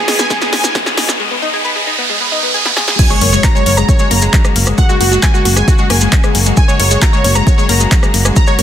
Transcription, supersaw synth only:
0.08 0.16 G#4 medium
0.19 0.28 G#5 loud
0.30 0.39 G#4 medium
0.42 0.50 G#4 medium
0.52 1.11 G#5 loud
2.99 3.08 G#5 loud
3.10 3.19 C#5 medium
3.22 3.30 C#5 medium
3.33 3.41 C#5 medium
3.44 3.52 A#5 medium
3.55 3.64 C#5 medium
3.66 3.75 C#5 medium
3.77 3.86 A#5 loud
3.88 3.97 C#5 medium
3.99 4.08 C#5 medium
4.11 4.69 A#5 loud
4.78 4.86 F#5 loud
4.89 4.98 F#4 medium
5.01 5.09 F#4 medium
5.12 5.20 F#4 medium
5.23 5.31 G#5 loud
5.34 5.42 F#4 medium
5.45 5.54 F#4 medium
5.56 5.65 G#5 loud
5.68 5.76 F#4 medium
5.79 5.87 F#4 medium
5.90 6.48 G#5 loud
6.57 6.66 G#5 loud
6.68 6.77 C#5 medium
6.80 6.88 C#5 medium
6.91 6.99 C#5 medium
7.02 7.10 A#5 loud
7.13 7.22 C#5 medium
7.24 7.33 C#5 medium
7.35 7.44 A#5 loud
7.47 7.55 C#5 medium
7.58 7.66 C#5 medium
7.69 8.27 A#5 loud
8.36 8.45 A#5 loud
8.47 8.56 C#5 medium
8.59 8.62 C#5 medium

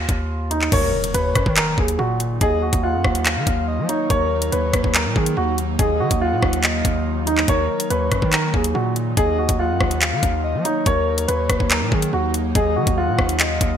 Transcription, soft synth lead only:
0.72 1.12 A#4 loud
1.15 1.54 C#5 medium
2.41 2.81 D#5 loud
2.83 3.23 F#5 medium
3.26 3.65 F5 medium
3.68 3.88 D#5 medium
3.89 4.09 C#5 medium
4.10 4.50 A#4 loud
4.52 4.92 C#5 loud
5.79 6.19 D#5 loud
6.22 6.61 F#5 medium
6.64 7.04 D#5 medium
7.48 7.88 A#4 loud
7.91 8.30 C#5 medium
9.17 9.57 D#5 loud
9.59 9.99 F#5 medium
10.02 10.41 F5 medium
10.44 10.64 D#5 medium
10.65 10.85 C#5 medium
10.86 11.26 A#4 loud
11.28 11.68 C#5 loud
12.55 12.95 D#5 loud
12.98 13.37 F#5 loud
13.40 13.77 D#5 medium

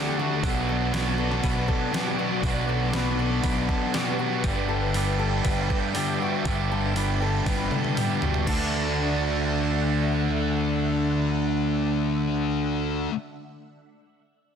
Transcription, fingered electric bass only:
0.43 1.39 B1 loud
1.44 1.66 B1 medium
2.43 3.40 B1 loud
3.44 3.66 B1 medium
4.44 5.41 G1 loud
5.45 5.67 G1 medium
6.45 7.42 G1 medium
7.46 7.68 G1 medium
8.47 13.07 D2 medium

